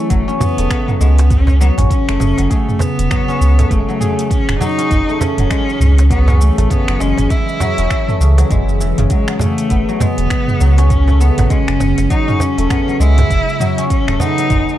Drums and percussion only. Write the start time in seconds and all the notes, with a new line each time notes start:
0.10 kick, closed hi-hat, shaker
0.29 shaker
0.40 cajon bass, cajon slap, mid tom, shaker
0.58 closed hi-hat, shaker
0.70 finger snap, kick, closed hi-hat, shaker
0.88 mid tom, shaker
1.01 shaker
1.18 cajon slap, closed hi-hat, shaker
1.30 kick, closed hi-hat, mid tom, shaker
1.47 cajon bass, cajon slap, shaker
1.61 shaker
1.78 cajon bass, closed hi-hat, mid tom, shaker
1.91 kick, closed hi-hat, shaker
2.09 finger snap, shaker
2.20 cajon slap, mid tom, shaker
2.38 cajon slap, closed hi-hat, shaker
2.51 kick, closed hi-hat, shaker
2.69 mid tom, shaker
2.79 cajon bass, cajon slap, shaker
2.99 closed hi-hat, shaker
3.11 finger snap, kick, closed hi-hat, mid tom, shaker
3.29 shaker
3.42 shaker
3.59 cajon slap, closed hi-hat, mid tom, shaker
3.71 kick, closed hi-hat, shaker
3.90 shaker
4.00 cajon slap, mid tom, shaker
4.19 closed hi-hat, shaker
4.31 kick, closed hi-hat, shaker
4.49 finger snap, mid tom, shaker
4.61 cajon bass, shaker
4.79 closed hi-hat, shaker
4.91 kick, closed hi-hat, mid tom, shaker
5.09 shaker
5.21 cajon bass, cajon slap, shaker
5.38 closed hi-hat, mid tom, shaker
5.51 finger snap, kick, closed hi-hat, shaker
5.69 shaker
5.81 mid tom, shaker
5.98 cajon slap, closed hi-hat, shaker
6.10 kick, closed hi-hat, shaker
6.28 cajon bass, cajon slap, mid tom, shaker
6.41 shaker
6.58 cajon bass, closed hi-hat, shaker
6.70 kick, closed hi-hat, mid tom, shaker
6.88 finger snap, shaker
7.00 cajon slap, shaker
7.18 cajon slap, closed hi-hat, mid tom, shaker
7.30 kick, closed hi-hat, shaker
7.49 shaker
7.60 cajon bass, cajon slap, mid tom, shaker
7.78 closed hi-hat, shaker
7.90 finger snap, kick, closed hi-hat, shaker
8.09 mid tom, shaker
8.21 shaker
8.38 cajon slap, closed hi-hat, shaker
8.50 kick, closed hi-hat, mid tom, shaker
8.69 shaker
8.80 cajon slap, shaker
8.98 closed hi-hat, mid tom, shaker
9.10 kick, closed hi-hat, shaker
9.28 finger snap, shaker
9.39 cajon bass, mid tom, shaker
9.58 closed hi-hat, shaker
9.70 kick, closed hi-hat, shaker
9.89 shaker
10.00 cajon bass, cajon slap, mid tom, shaker
10.18 closed hi-hat, shaker
10.30 finger snap, kick, closed hi-hat, shaker
10.48 mid tom, shaker
10.61 shaker
10.78 cajon slap, closed hi-hat, shaker
10.90 kick, closed hi-hat, mid tom, shaker
11.08 cajon bass, cajon slap, shaker
11.21 shaker
11.38 cajon bass, closed hi-hat, mid tom, shaker
11.50 kick, closed hi-hat, shaker
11.68 finger snap, shaker
11.80 cajon slap, mid tom, shaker
11.98 cajon slap, closed hi-hat, shaker
12.10 kick, closed hi-hat, shaker
12.28 mid tom, shaker
12.40 cajon bass, cajon slap, shaker
12.58 closed hi-hat, shaker
12.70 finger snap, kick, closed hi-hat, mid tom, shaker
12.89 shaker
13.01 shaker
13.18 cajon slap, closed hi-hat, mid tom, shaker
13.30 kick, closed hi-hat, shaker
13.49 shaker
13.59 cajon slap, mid tom, shaker
13.78 closed hi-hat, shaker
13.90 kick, closed hi-hat, shaker
14.08 finger snap, mid tom, shaker
14.20 cajon bass, shaker
14.38 closed hi-hat, shaker
14.50 kick, closed hi-hat, mid tom, shaker
14.69 shaker